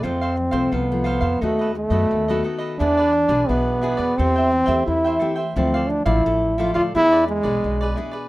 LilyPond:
<<
  \new Staff \with { instrumentName = "Cavaquinho" } { \time 4/4 \key e \phrygian \tempo 4 = 87 <f' a' c'' f''>16 <a' c'' f''>16 r16 <a' c'' f''>16 <f' a' f''>8 <f' a' c'' f''>16 <a' c'' f''>16 <dis' a' b' dis''>16 <a' b' dis''>16 r16 <a' b' dis''>8 <a' b' dis''>16 <dis' a' b' dis''>16 <a' b' dis''>16 | <e' gis' b' d''>16 <gis' b' d''>16 r16 <gis' b' d''>16 <e' gis' b' d''>8 <e' gis' b' d''>16 <gis' b' d''>16 <a' c'' e'' g''>16 <c'' e'' g''>16 r16 <c'' e'' g''>8 <c'' e'' g''>16 <a' c'' e'' g''>16 <c'' e'' g''>16 | <e' a' d'' f''>16 <a' d'' f''>16 r16 <a' d'' f''>16 <a' d''>8 <e' a' d'' f''>16 <a' d'' f''>16 <e' gis' b' d''>16 <gis' b' d''>16 r16 <gis' b' d''>8 <gis' b' d''>16 <e' gis' b' d''>16 <gis' b' d''>16 | }
  \new Staff \with { instrumentName = "Trombone" } { \time 4/4 \key e \phrygian c'4 b4 a8 a4 r8 | d'4 b4 c'4 e'8. r16 | c'8 d'16 e'8. f'16 f'16 e'8 gis4 r8 | }
  \new Staff \with { instrumentName = "Nylon-string guitar" } { \time 4/4 \key e \phrygian << { <f a c'>8 r16 <f a c'>8 <f a>8. <a b fis'>8 r16 <a b fis'>8 <a b fis'>8. | <b d' gis'>8. <b d' gis'>8. <b d' gis'>16 r16 <a c' g'>8 r16 <a c' g'>8. <a c' g'>16 r16 | <f a e'>8. <f a e'>8. <f a e'>8 <b d' gis'>8. <b d' gis'>8. <b d' gis'>8 | } \\ { f,4 c4 dis4 dis4 | e4 b,4 e4 e4 | d4 a,4 e4 b,4 | } >> }
  \new Staff \with { instrumentName = "Upright bass" } { \clef bass \time 4/4 \key e \phrygian f,8. c,16 c,8. f,16 dis,8. fis,16 dis,8 r8 | e,8. b,,16 b,,8. e,16 e,8. e,16 e,8 r8 | d,8. a,,16 a,,8. d,16 e,8. b,,16 b,,8 r8 | }
>>